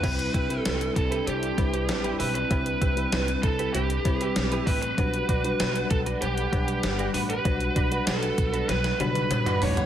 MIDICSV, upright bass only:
0, 0, Header, 1, 2, 480
1, 0, Start_track
1, 0, Tempo, 618557
1, 24, Time_signature, 4, 2, 24, 8
1, 7651, End_track
2, 0, Start_track
2, 0, Title_t, "Upright bass"
2, 0, Program_c, 0, 32
2, 27, Note_on_c, 0, 36, 97
2, 199, Note_off_c, 0, 36, 0
2, 265, Note_on_c, 0, 36, 95
2, 438, Note_off_c, 0, 36, 0
2, 507, Note_on_c, 0, 36, 92
2, 679, Note_off_c, 0, 36, 0
2, 747, Note_on_c, 0, 36, 94
2, 919, Note_off_c, 0, 36, 0
2, 984, Note_on_c, 0, 36, 86
2, 1157, Note_off_c, 0, 36, 0
2, 1226, Note_on_c, 0, 36, 91
2, 1466, Note_off_c, 0, 36, 0
2, 1466, Note_on_c, 0, 33, 87
2, 1638, Note_off_c, 0, 33, 0
2, 1704, Note_on_c, 0, 35, 84
2, 1877, Note_off_c, 0, 35, 0
2, 1945, Note_on_c, 0, 36, 108
2, 2117, Note_off_c, 0, 36, 0
2, 2184, Note_on_c, 0, 36, 96
2, 2357, Note_off_c, 0, 36, 0
2, 2426, Note_on_c, 0, 36, 87
2, 2598, Note_off_c, 0, 36, 0
2, 2664, Note_on_c, 0, 36, 90
2, 2837, Note_off_c, 0, 36, 0
2, 2904, Note_on_c, 0, 36, 92
2, 3077, Note_off_c, 0, 36, 0
2, 3145, Note_on_c, 0, 36, 90
2, 3317, Note_off_c, 0, 36, 0
2, 3383, Note_on_c, 0, 35, 96
2, 3556, Note_off_c, 0, 35, 0
2, 3622, Note_on_c, 0, 33, 102
2, 3796, Note_off_c, 0, 33, 0
2, 3865, Note_on_c, 0, 35, 104
2, 4037, Note_off_c, 0, 35, 0
2, 4103, Note_on_c, 0, 35, 106
2, 4277, Note_off_c, 0, 35, 0
2, 4343, Note_on_c, 0, 35, 101
2, 4516, Note_off_c, 0, 35, 0
2, 4583, Note_on_c, 0, 35, 99
2, 4756, Note_off_c, 0, 35, 0
2, 4826, Note_on_c, 0, 35, 95
2, 4998, Note_off_c, 0, 35, 0
2, 5064, Note_on_c, 0, 35, 105
2, 5237, Note_off_c, 0, 35, 0
2, 5302, Note_on_c, 0, 31, 102
2, 5475, Note_off_c, 0, 31, 0
2, 5541, Note_on_c, 0, 33, 96
2, 5715, Note_off_c, 0, 33, 0
2, 5782, Note_on_c, 0, 35, 108
2, 5955, Note_off_c, 0, 35, 0
2, 6022, Note_on_c, 0, 35, 100
2, 6195, Note_off_c, 0, 35, 0
2, 6258, Note_on_c, 0, 35, 93
2, 6433, Note_off_c, 0, 35, 0
2, 6503, Note_on_c, 0, 35, 100
2, 6676, Note_off_c, 0, 35, 0
2, 6739, Note_on_c, 0, 35, 106
2, 6914, Note_off_c, 0, 35, 0
2, 6981, Note_on_c, 0, 35, 98
2, 7155, Note_off_c, 0, 35, 0
2, 7219, Note_on_c, 0, 31, 85
2, 7393, Note_off_c, 0, 31, 0
2, 7461, Note_on_c, 0, 33, 95
2, 7635, Note_off_c, 0, 33, 0
2, 7651, End_track
0, 0, End_of_file